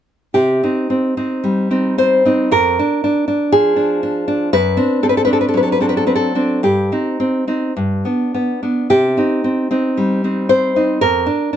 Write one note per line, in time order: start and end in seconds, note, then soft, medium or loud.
0.34 0.61 C3 soft
0.34 1.93 G4 medium
0.63 0.89 C4 soft
0.63 1.16 D#4 soft
0.90 1.16 C4 soft
1.17 1.70 C4 soft
1.17 1.70 D#4 soft
1.44 2.51 G3 soft
1.71 1.97 C4 soft
1.71 2.25 D#4 soft
1.98 2.24 C4 soft
1.98 2.49 C5 medium
2.25 2.49 C4 soft
2.25 2.49 D#4 soft
2.51 2.76 F2 medium
2.51 3.48 A#4 medium
2.79 3.03 D4 soft
3.04 3.26 D4 soft
3.28 3.75 D4 soft
3.52 4.51 F3 soft
3.52 4.47 G#4 medium
3.76 4.02 D4 soft
4.03 4.26 D4 soft
4.28 4.49 D4 soft
4.53 4.76 F#2 medium
4.53 5.00 B4 loud
4.77 5.02 C4 soft
4.77 5.26 D4 soft
5.03 5.25 C4 soft
5.03 5.09 A4 medium
5.09 5.17 B4 medium
5.17 5.24 A4 medium
5.25 5.79 C4 soft
5.25 5.79 D4 soft
5.25 5.32 B4 medium
5.33 5.40 A4 medium
5.41 5.48 B4 medium
5.48 5.56 A4 medium
5.54 6.62 F#3 soft
5.54 5.62 B4 medium
5.63 5.72 A4 medium
5.72 5.81 B4 medium
5.80 6.05 C4 soft
5.80 6.34 D4 soft
5.80 5.89 A4 medium
5.89 5.97 B4 medium
5.97 6.05 A4 medium
6.07 6.34 C4 soft
6.07 6.15 B4 soft
6.16 6.60 A4 medium
6.35 6.60 C4 soft
6.35 6.60 D4 soft
6.63 6.89 G2 soft
6.63 8.28 G4 medium
6.92 7.19 C4 soft
6.92 7.47 D#4 soft
7.20 7.46 C4 soft
7.47 7.72 C4 soft
7.47 7.72 D#4 soft
7.77 8.03 G2 soft
8.05 8.33 B3 soft
8.05 8.61 D4 soft
8.34 8.62 B3 soft
8.63 8.87 B3 soft
8.63 8.87 D4 soft
8.90 9.16 C3 medium
8.90 10.46 G4 medium
9.17 9.43 C4 soft
9.17 9.70 D#4 soft
9.44 9.70 C4 soft
9.71 10.23 C4 soft
9.71 10.23 D#4 soft
9.97 11.01 G3 soft
10.24 10.49 C4 soft
10.24 10.75 D#4 soft
10.49 10.75 C4 soft
10.49 10.99 C5 medium
10.76 10.99 C4 soft
10.76 10.99 D#4 soft
11.01 11.26 F2 medium
11.01 11.57 A#4 medium
11.26 11.52 D4 soft
11.53 11.57 D4 soft